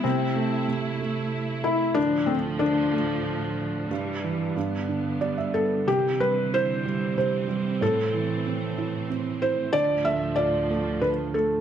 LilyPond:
<<
  \new Staff \with { instrumentName = "Felt piano" } { \time 3/4 \key c \major \tempo 4 = 93 c'4 r4. e'8 | d'8 c'8 d'2~ | d'2 r8 a'8 | g'8 b'8 c''4 c''4 |
a'2 r8 c''8 | d''8 e''8 d''4 b'8 a'8 | }
  \new Staff \with { instrumentName = "Felt piano" } { \time 3/4 \key c \major r2. | r2. | r2 d''16 e''8. | r2. |
r2. | r2. | }
  \new Staff \with { instrumentName = "Felt piano" } { \clef bass \time 3/4 \key c \major c8 a8 c8 a4. | d8 a8 d8 a4. | g,8 e8 g,8 d8 g8 b8 | c8 g8 e'8 g8 c8 g8 |
a,8 e8 c'8 e'8 c'8 e'8 | d8 a8 f'8 a8 d8 a8 | }
  \new Staff \with { instrumentName = "String section" } { \clef bass \time 3/4 \key c \major << { <a e'>2. | <a, f>2. | <g, e g>4 <d b>2 | <e c'>2.~ |
<e c'>2. | f2. | } \\ { c2. | d,2. | c4 g,2 | d2. |
a,2. | d,2. | } >> }
>>